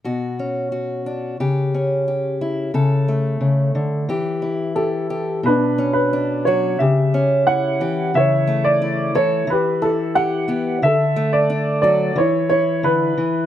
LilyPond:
<<
  \new Staff \with { instrumentName = "Upright piano" } { \time 4/4 \key b \minor \tempo 4 = 89 << { r1 | r2. a'4 | b'8. b'8. cis''8 e''4 fis''4 | e''8. d''8. cis''8 b'8 a'8 fis''4 |
e''8. d''8. d''8 cis''8 cis''8 b'4 | } \\ { r1 | r1 | d'2 g'2 | cis''2 g'2 |
a'2 e'2 | } >> }
  \new Staff \with { instrumentName = "Steel-string acoustic guitar" } { \time 4/4 \key b \minor << { fis'8 cis'8 fis'8 d'8 g'8 cis'8 g'8 e'8 | a'8 a4. g'8 e'8 g'8 g'8 | r8 cis'8 d'8 fis'8 r8 cis'8 e'8 g'8 | r8 a8 e'8 a'8 r8 e'8 g'8 g'8 |
r8 a8 d'8 fis'8 r8 e'4. | } \\ { b,2 cis2 | cis4 cis8 d8 e2 | b,4. fis8 cis4. e8 | cis4. e8 e4. b8 |
d4. fis8 e4 d8 e8 | } >> }
>>